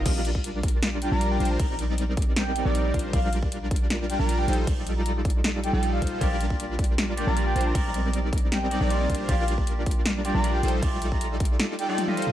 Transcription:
<<
  \new Staff \with { instrumentName = "Soft synth lead" } { \time 4/4 \key bes \major \tempo 4 = 156 f''16 f''16 r2 g''16 bes''8 g''16 g''16 bes''16 | bes''16 bes''16 r4. g''8. d''8. r8 | f''16 f''16 r2 g''16 bes''8 g''16 g''16 r16 | r8. bes''8 r4 r16 g''16 g''8 f''8. |
f''16 f''16 r2 g''16 bes''8 g''16 g''16 bes''16 | bes''16 bes''16 r4. g''8. d''8. r8 | f''16 f''16 r2 g''16 bes''8 g''16 g''16 r16 | r8. bes''8 r4 r16 g''16 g''8 f''8. | }
  \new Staff \with { instrumentName = "Clean electric guitar" } { \time 4/4 \key bes \major r1 | r1 | r1 | r1 |
<bes f' g' d''>2~ <bes f' g' d''>8 <bes f' g' d''>8 <bes f' g' d''>4 | <c' ees' bes' d''>2~ <c' ees' bes' d''>8 <c' ees' bes' d''>8 <bes f' g' d''>4 | <bes f' g' d''>2~ <bes f' g' d''>8 <bes f' g' d''>8 <a f' g' d''>4 | <a f' g' d''>2~ <a f' g' d''>8 r16 <a f' g' d''>8 <a f' g' ees''>8. | }
  \new Staff \with { instrumentName = "Supersaw synth" } { \time 4/4 \key bes \major <g d' f' bes' d''>2~ <g d' f' bes' d''>8. <g d' f' bes' d''>8. <g d' f' bes' c''>8 | <g c' ees' bes' d''>2~ <g c' ees' bes' d''>8. <g c' ees' bes' d''>8. <g d' f' bes' c''>8 | <g d' f' bes' d''>2~ <g d' f' bes' d''>8. <g d' f' bes' d''>8. <g ees' f' a' c''>8 | <g ees' f' a' d''>2~ <g ees' f' a' d''>8. <g ees' f' a' d''>8. <g ees' f' a' c''>8 |
<g d' f' bes' d''>2~ <g d' f' bes' d''>8. <g d' f' bes' d''>8. <g d' f' bes' c''>8 | <g c' ees' bes' d''>2~ <g c' ees' bes' d''>8. <g c' ees' bes' d''>8. <g d' f' bes' c''>8 | <g d' f' bes' d''>2~ <g d' f' bes' d''>8. <g d' f' bes' d''>8. <g ees' f' a' c''>8 | <g ees' f' a' d''>2~ <g ees' f' a' d''>8. <g ees' f' a' d''>8. <g ees' f' a' c''>8 | }
  \new Staff \with { instrumentName = "808-style bass" } { \clef bass \time 4/4 \key bes \major bes,,2~ bes,,8. bes,,8. bes,,8 | bes,,2~ bes,,8. bes,,8. bes,,8 | bes,,2~ bes,,8. bes,,8. bes,,8 | bes,,2~ bes,,8. bes,,8. bes,,8 |
bes,,2~ bes,,8. bes,,8. bes,,8 | bes,,2~ bes,,8. bes,,8. bes,,8 | bes,,2~ bes,,8. bes,,8. bes,,8 | bes,,2 r2 | }
  \new DrumStaff \with { instrumentName = "Drums" } \drummode { \time 4/4 <cymc hh bd>8 hh16 bd16 hh8 <hh bd>32 hh16. <hh sn>8 hh8 hh8 hh32 hh16. | <cymc hh bd>8 hh8 hh8 <hh bd>32 hh16. <hh sn>8 hh8 hh8 <hh bd>32 hh16. | <cymc hh bd>8 hh16 bd16 hh8 <hh bd>32 hh16. <hh sn>8 hh8 hh8 hh32 hh16. | <cymc hh bd>8 hh8 hh8 <hh bd>32 hh16. <hh sn>8 hh8 hh8 <hh bd>32 hh16. |
<cymc hh bd>8 hh16 bd16 hh8 <hh bd>32 hh16. <hh sn>8 hh8 hh8 hh32 hh16. | <cymc hh bd>8 hh8 hh8 <hh bd>32 hh16. <hh sn>8 hh8 hh8 <hh bd>32 hh16. | <cymc hh bd>8 hh16 bd16 hh8 <hh bd>32 hh16. <hh sn>8 hh8 hh8 hh32 hh16. | <cymc hh bd>8 hh16 bd16 hh8 <hh bd>32 hh16. <hh sn>8 hh8 <hh tommh>16 tommh16 hh32 hh32 toml16 | }
>>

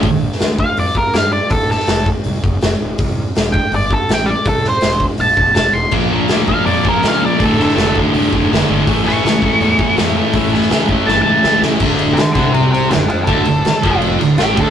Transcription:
<<
  \new Staff \with { instrumentName = "Lead electric guitar" } { \time 4/4 \key d \minor \tempo 4 = 163 r4. f''8 d''8 bes'8 f''8 d''8 | a'8 a'4 r2 r8 | r4. g''8 d''8 a'8 g''8 d''8 | a'8 c''4 r8 a''4 a''8 c'''8 |
r4. f''8 d''8 bes'8 f''8 d''8 | a'8 a'4 r2 r8 | r8 cis'''2. r8 | r2 a''8 a''4 r8 |
r4 <a' d''>8 <a' d''>8 <g' c''>8 <g' c''>8 <f' a'>8 <f' a'>8 | a'2 r4 g'8 a'8 | }
  \new Staff \with { instrumentName = "Distorted electric guitar" } { \clef bass \time 4/4 \key d \minor r1 | r1 | r1 | r1 |
<bes, f bes>8 <bes, f bes>8 <bes, f bes>8 <bes, f bes>8 <bes, f bes>8 <bes, f bes>8 <bes, f bes>8 <bes, f bes>8 | <d, a, d>8 <d, a, d>8 <d, a, d>8 <d, a, d>8 <d, a, d>8 <d, a, d>8 <d, a, d>8 <d, a, d>8 | <a, e a>8 <a, e a>8 <a, e a>8 <a, e a>8 <a, e a>8 <a, e a>8 <a, e a>8 <a, e a>8 | <a, e a>8 <a, e a>8 <a, e a>8 <a, e a>8 <a, e a>8 <a, e a>8 <a, e a>8 <a, e a>8 |
<d, d>4 r8 <c c'>4. d,8 r8 | <d, d>8 d,8 r8 <f, f>4 d,8 <a, a>8 <d, d>8 | }
  \new Staff \with { instrumentName = "Fingered electric bass" } { \clef bass \time 4/4 \key d \minor bes,,4 d,4 f,4 g,4 | d,,4 f,,4 c,8 f,,8 f,,8 d,,8 | c,4 e,,4 g,,4 a,,4 | c,4 e,,4 bes,,8 e,,8 e,,8 e,,8 |
bes,,4 d,4 f,4 cis,4 | d,,4 f,,4 c,8 f,,8 f,,8 g,,8 | a,,4 cis,4 e,4 f,4 | a,,4 cis,4 g,,8 cis,8 cis,8 cis,8 |
d,,4 r8 c,4. d,,8 r8 | d,,8 d,,8 r8 f,,4 d,,8 a,,8 d,,8 | }
  \new DrumStaff \with { instrumentName = "Drums" } \drummode { \time 4/4 <hho bd>8. sn16 <hho sn>8 bd8 hho8 bd8 <hho sn>4 | <hho bd>8 sn16 sn16 <hho sn>8 bd8 hho8 bd8 <hho sn>4 | <hho bd>4 <hho sn>8 bd8 hho8 bd8 <hho sn>4 | <hho bd>8 sn8 <hho sn>8 bd8 hho8 bd8 <hho sn>4 |
<cymc bd>4 <hho sn>8 bd8 hho8 bd8 <hho sn>4 | <hho bd>8 sn16 sn16 <hho sn>8 bd8 hho8 bd8 <hho sn>4 | <hho bd>8 sn8 <hho sn>8 bd8 hho8 bd8 <hho sn>4 | <hho bd>8 sn16 sn16 <hho sn>8 bd8 sn4 sn8 sn8 |
<cymc bd>8 cymr8 <cymr sn>8 <bd cymr sn>8 cymr8 cymr8 <cymr sn>8 cymr8 | <bd cymr>8 cymr8 <cymr sn>8 <bd cymr>8 cymr8 cymr8 <cymr sn>8 <bd cymr>8 | }
>>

